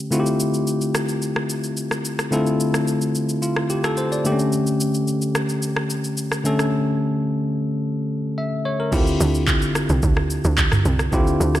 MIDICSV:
0, 0, Header, 1, 4, 480
1, 0, Start_track
1, 0, Key_signature, -1, "minor"
1, 0, Tempo, 550459
1, 105, Time_signature, 4, 2, 24, 8
1, 10115, End_track
2, 0, Start_track
2, 0, Title_t, "Tine electric piano"
2, 0, Program_c, 0, 4
2, 0, Control_c, 0, 64, 127
2, 93, Note_on_c, 0, 50, 70
2, 99, Note_on_c, 0, 57, 63
2, 103, Note_on_c, 0, 60, 64
2, 106, Note_on_c, 0, 64, 66
2, 111, Note_on_c, 0, 65, 66
2, 115, Control_c, 0, 64, 0
2, 115, Note_on_c, 0, 66, 62
2, 169, Note_off_c, 0, 66, 0
2, 172, Note_on_c, 0, 67, 81
2, 262, Control_c, 0, 64, 127
2, 1984, Note_off_c, 0, 50, 0
2, 1987, Note_off_c, 0, 57, 0
2, 1989, Note_off_c, 0, 60, 0
2, 1991, Note_off_c, 0, 64, 0
2, 1993, Note_off_c, 0, 65, 0
2, 2015, Note_on_c, 0, 50, 73
2, 2019, Note_on_c, 0, 57, 68
2, 2023, Note_off_c, 0, 67, 0
2, 2024, Note_on_c, 0, 60, 67
2, 2028, Note_on_c, 0, 64, 67
2, 2032, Note_on_c, 0, 65, 66
2, 2036, Note_on_c, 0, 69, 78
2, 2967, Note_off_c, 0, 64, 0
2, 2969, Note_off_c, 0, 65, 0
2, 2971, Note_off_c, 0, 69, 0
2, 2984, Note_on_c, 0, 65, 60
2, 3213, Note_off_c, 0, 65, 0
2, 3226, Note_on_c, 0, 67, 68
2, 3344, Note_off_c, 0, 67, 0
2, 3352, Note_on_c, 0, 69, 72
2, 3460, Note_off_c, 0, 69, 0
2, 3467, Note_on_c, 0, 72, 65
2, 3584, Note_off_c, 0, 72, 0
2, 3593, Note_on_c, 0, 74, 65
2, 3666, Note_off_c, 0, 50, 0
2, 3668, Note_off_c, 0, 57, 0
2, 3671, Note_off_c, 0, 60, 0
2, 3697, Note_on_c, 0, 50, 72
2, 3705, Note_on_c, 0, 57, 67
2, 3712, Note_on_c, 0, 58, 53
2, 3715, Control_c, 0, 64, 0
2, 3719, Note_on_c, 0, 67, 78
2, 3767, Note_off_c, 0, 58, 0
2, 3768, Note_on_c, 0, 61, 68
2, 3819, Note_off_c, 0, 74, 0
2, 3865, Control_c, 0, 64, 127
2, 5586, Note_off_c, 0, 50, 0
2, 5590, Note_off_c, 0, 57, 0
2, 5597, Note_off_c, 0, 67, 0
2, 5615, Note_on_c, 0, 50, 72
2, 5619, Note_off_c, 0, 61, 0
2, 5623, Note_on_c, 0, 57, 67
2, 5630, Note_on_c, 0, 61, 68
2, 5637, Note_on_c, 0, 69, 79
2, 7277, Note_off_c, 0, 69, 0
2, 7306, Note_on_c, 0, 76, 61
2, 7505, Note_off_c, 0, 50, 0
2, 7509, Note_off_c, 0, 57, 0
2, 7512, Note_off_c, 0, 61, 0
2, 7533, Note_off_c, 0, 76, 0
2, 7546, Note_on_c, 0, 73, 70
2, 7664, Note_off_c, 0, 73, 0
2, 7672, Note_on_c, 0, 70, 67
2, 7775, Note_on_c, 0, 50, 75
2, 7780, Note_on_c, 0, 60, 72
2, 7784, Note_on_c, 0, 64, 72
2, 7790, Note_on_c, 0, 65, 70
2, 7795, Control_c, 0, 64, 0
2, 7796, Note_on_c, 0, 67, 81
2, 7899, Note_off_c, 0, 70, 0
2, 7959, Control_c, 0, 64, 127
2, 9665, Note_off_c, 0, 50, 0
2, 9667, Note_off_c, 0, 60, 0
2, 9670, Note_off_c, 0, 64, 0
2, 9673, Note_off_c, 0, 65, 0
2, 9676, Note_off_c, 0, 67, 0
2, 9695, Note_on_c, 0, 50, 77
2, 9701, Note_on_c, 0, 60, 71
2, 9705, Note_on_c, 0, 64, 71
2, 9711, Note_on_c, 0, 65, 72
2, 9716, Note_on_c, 0, 67, 86
2, 10115, Note_off_c, 0, 50, 0
2, 10115, Note_off_c, 0, 60, 0
2, 10115, Note_off_c, 0, 64, 0
2, 10115, Note_off_c, 0, 65, 0
2, 10115, Note_off_c, 0, 67, 0
2, 10115, End_track
3, 0, Start_track
3, 0, Title_t, "Log drum bass"
3, 0, Program_c, 1, 39
3, 7784, Note_on_c, 1, 38, 100
3, 7989, Note_off_c, 1, 38, 0
3, 8026, Note_on_c, 1, 38, 102
3, 8390, Note_on_c, 1, 33, 87
3, 8403, Note_off_c, 1, 38, 0
3, 8594, Note_off_c, 1, 33, 0
3, 8630, Note_on_c, 1, 36, 91
3, 8728, Note_off_c, 1, 36, 0
3, 8746, Note_on_c, 1, 38, 96
3, 9056, Note_off_c, 1, 38, 0
3, 9109, Note_on_c, 1, 38, 91
3, 9412, Note_off_c, 1, 38, 0
3, 9464, Note_on_c, 1, 36, 98
3, 9668, Note_off_c, 1, 36, 0
3, 9704, Note_on_c, 1, 38, 100
3, 9908, Note_off_c, 1, 38, 0
3, 9943, Note_on_c, 1, 38, 99
3, 10115, Note_off_c, 1, 38, 0
3, 10115, End_track
4, 0, Start_track
4, 0, Title_t, "Drums"
4, 104, Note_on_c, 9, 82, 72
4, 191, Note_off_c, 9, 82, 0
4, 229, Note_on_c, 9, 82, 53
4, 316, Note_off_c, 9, 82, 0
4, 347, Note_on_c, 9, 82, 101
4, 435, Note_off_c, 9, 82, 0
4, 470, Note_on_c, 9, 82, 55
4, 557, Note_off_c, 9, 82, 0
4, 587, Note_on_c, 9, 82, 67
4, 674, Note_off_c, 9, 82, 0
4, 710, Note_on_c, 9, 82, 52
4, 797, Note_off_c, 9, 82, 0
4, 825, Note_on_c, 9, 37, 104
4, 826, Note_on_c, 9, 82, 84
4, 913, Note_off_c, 9, 37, 0
4, 914, Note_off_c, 9, 82, 0
4, 948, Note_on_c, 9, 82, 57
4, 1035, Note_off_c, 9, 82, 0
4, 1064, Note_on_c, 9, 82, 69
4, 1151, Note_off_c, 9, 82, 0
4, 1187, Note_on_c, 9, 37, 87
4, 1275, Note_off_c, 9, 37, 0
4, 1304, Note_on_c, 9, 82, 88
4, 1391, Note_off_c, 9, 82, 0
4, 1428, Note_on_c, 9, 82, 48
4, 1515, Note_off_c, 9, 82, 0
4, 1543, Note_on_c, 9, 82, 74
4, 1630, Note_off_c, 9, 82, 0
4, 1667, Note_on_c, 9, 37, 89
4, 1674, Note_on_c, 9, 82, 51
4, 1754, Note_off_c, 9, 37, 0
4, 1761, Note_off_c, 9, 82, 0
4, 1787, Note_on_c, 9, 82, 86
4, 1874, Note_off_c, 9, 82, 0
4, 1909, Note_on_c, 9, 37, 82
4, 1910, Note_on_c, 9, 82, 50
4, 1996, Note_off_c, 9, 37, 0
4, 1998, Note_off_c, 9, 82, 0
4, 2026, Note_on_c, 9, 82, 76
4, 2113, Note_off_c, 9, 82, 0
4, 2151, Note_on_c, 9, 82, 52
4, 2238, Note_off_c, 9, 82, 0
4, 2270, Note_on_c, 9, 82, 101
4, 2357, Note_off_c, 9, 82, 0
4, 2390, Note_on_c, 9, 37, 90
4, 2392, Note_on_c, 9, 82, 53
4, 2477, Note_off_c, 9, 37, 0
4, 2479, Note_off_c, 9, 82, 0
4, 2508, Note_on_c, 9, 82, 70
4, 2595, Note_off_c, 9, 82, 0
4, 2629, Note_on_c, 9, 82, 54
4, 2717, Note_off_c, 9, 82, 0
4, 2747, Note_on_c, 9, 82, 81
4, 2835, Note_off_c, 9, 82, 0
4, 2869, Note_on_c, 9, 82, 54
4, 2957, Note_off_c, 9, 82, 0
4, 2986, Note_on_c, 9, 82, 70
4, 3073, Note_off_c, 9, 82, 0
4, 3108, Note_on_c, 9, 37, 85
4, 3195, Note_off_c, 9, 37, 0
4, 3225, Note_on_c, 9, 82, 89
4, 3312, Note_off_c, 9, 82, 0
4, 3349, Note_on_c, 9, 82, 48
4, 3350, Note_on_c, 9, 37, 101
4, 3436, Note_off_c, 9, 82, 0
4, 3437, Note_off_c, 9, 37, 0
4, 3463, Note_on_c, 9, 82, 73
4, 3550, Note_off_c, 9, 82, 0
4, 3594, Note_on_c, 9, 82, 47
4, 3681, Note_off_c, 9, 82, 0
4, 3706, Note_on_c, 9, 82, 90
4, 3793, Note_off_c, 9, 82, 0
4, 3829, Note_on_c, 9, 82, 49
4, 3917, Note_off_c, 9, 82, 0
4, 3945, Note_on_c, 9, 82, 76
4, 4033, Note_off_c, 9, 82, 0
4, 4070, Note_on_c, 9, 82, 52
4, 4157, Note_off_c, 9, 82, 0
4, 4189, Note_on_c, 9, 82, 107
4, 4276, Note_off_c, 9, 82, 0
4, 4311, Note_on_c, 9, 82, 54
4, 4398, Note_off_c, 9, 82, 0
4, 4426, Note_on_c, 9, 82, 67
4, 4514, Note_off_c, 9, 82, 0
4, 4549, Note_on_c, 9, 82, 52
4, 4637, Note_off_c, 9, 82, 0
4, 4666, Note_on_c, 9, 37, 103
4, 4667, Note_on_c, 9, 82, 85
4, 4753, Note_off_c, 9, 37, 0
4, 4754, Note_off_c, 9, 82, 0
4, 4788, Note_on_c, 9, 82, 55
4, 4876, Note_off_c, 9, 82, 0
4, 4904, Note_on_c, 9, 82, 69
4, 4991, Note_off_c, 9, 82, 0
4, 5027, Note_on_c, 9, 37, 89
4, 5114, Note_off_c, 9, 37, 0
4, 5144, Note_on_c, 9, 82, 88
4, 5232, Note_off_c, 9, 82, 0
4, 5269, Note_on_c, 9, 82, 50
4, 5356, Note_off_c, 9, 82, 0
4, 5383, Note_on_c, 9, 82, 74
4, 5471, Note_off_c, 9, 82, 0
4, 5507, Note_on_c, 9, 37, 87
4, 5514, Note_on_c, 9, 82, 51
4, 5595, Note_off_c, 9, 37, 0
4, 5601, Note_off_c, 9, 82, 0
4, 5626, Note_on_c, 9, 82, 89
4, 5713, Note_off_c, 9, 82, 0
4, 5748, Note_on_c, 9, 37, 80
4, 5750, Note_on_c, 9, 82, 49
4, 5835, Note_off_c, 9, 37, 0
4, 5837, Note_off_c, 9, 82, 0
4, 7784, Note_on_c, 9, 36, 119
4, 7784, Note_on_c, 9, 49, 91
4, 7784, Note_on_c, 9, 82, 77
4, 7871, Note_off_c, 9, 36, 0
4, 7871, Note_off_c, 9, 49, 0
4, 7871, Note_off_c, 9, 82, 0
4, 7908, Note_on_c, 9, 82, 56
4, 7995, Note_off_c, 9, 82, 0
4, 8027, Note_on_c, 9, 82, 111
4, 8114, Note_off_c, 9, 82, 0
4, 8151, Note_on_c, 9, 82, 53
4, 8238, Note_off_c, 9, 82, 0
4, 8262, Note_on_c, 9, 36, 93
4, 8264, Note_on_c, 9, 39, 94
4, 8266, Note_on_c, 9, 82, 73
4, 8349, Note_off_c, 9, 36, 0
4, 8351, Note_off_c, 9, 39, 0
4, 8353, Note_off_c, 9, 82, 0
4, 8389, Note_on_c, 9, 82, 54
4, 8476, Note_off_c, 9, 82, 0
4, 8504, Note_on_c, 9, 37, 104
4, 8505, Note_on_c, 9, 82, 89
4, 8592, Note_off_c, 9, 37, 0
4, 8593, Note_off_c, 9, 82, 0
4, 8628, Note_on_c, 9, 82, 58
4, 8715, Note_off_c, 9, 82, 0
4, 8743, Note_on_c, 9, 82, 76
4, 8746, Note_on_c, 9, 36, 109
4, 8830, Note_off_c, 9, 82, 0
4, 8833, Note_off_c, 9, 36, 0
4, 8866, Note_on_c, 9, 37, 86
4, 8953, Note_off_c, 9, 37, 0
4, 8984, Note_on_c, 9, 82, 89
4, 9071, Note_off_c, 9, 82, 0
4, 9107, Note_on_c, 9, 82, 49
4, 9195, Note_off_c, 9, 82, 0
4, 9222, Note_on_c, 9, 82, 76
4, 9224, Note_on_c, 9, 39, 92
4, 9225, Note_on_c, 9, 36, 80
4, 9309, Note_off_c, 9, 82, 0
4, 9312, Note_off_c, 9, 39, 0
4, 9313, Note_off_c, 9, 36, 0
4, 9345, Note_on_c, 9, 37, 90
4, 9351, Note_on_c, 9, 45, 94
4, 9352, Note_on_c, 9, 82, 48
4, 9433, Note_off_c, 9, 37, 0
4, 9438, Note_off_c, 9, 45, 0
4, 9439, Note_off_c, 9, 82, 0
4, 9464, Note_on_c, 9, 82, 88
4, 9552, Note_off_c, 9, 82, 0
4, 9586, Note_on_c, 9, 37, 86
4, 9588, Note_on_c, 9, 82, 50
4, 9673, Note_off_c, 9, 37, 0
4, 9675, Note_off_c, 9, 82, 0
4, 9703, Note_on_c, 9, 82, 76
4, 9704, Note_on_c, 9, 36, 114
4, 9790, Note_off_c, 9, 82, 0
4, 9791, Note_off_c, 9, 36, 0
4, 9828, Note_on_c, 9, 82, 54
4, 9916, Note_off_c, 9, 82, 0
4, 9948, Note_on_c, 9, 82, 106
4, 10035, Note_off_c, 9, 82, 0
4, 10070, Note_on_c, 9, 37, 94
4, 10072, Note_on_c, 9, 82, 58
4, 10115, Note_off_c, 9, 37, 0
4, 10115, Note_off_c, 9, 82, 0
4, 10115, End_track
0, 0, End_of_file